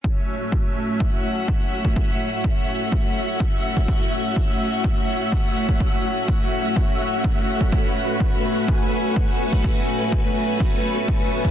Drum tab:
BD |o---o---o---o--o|o---o---o---o--o|o---o---o---o--o|o---o---o---o--o|

BD |o---o---o---o--o|o---o---o---o--o|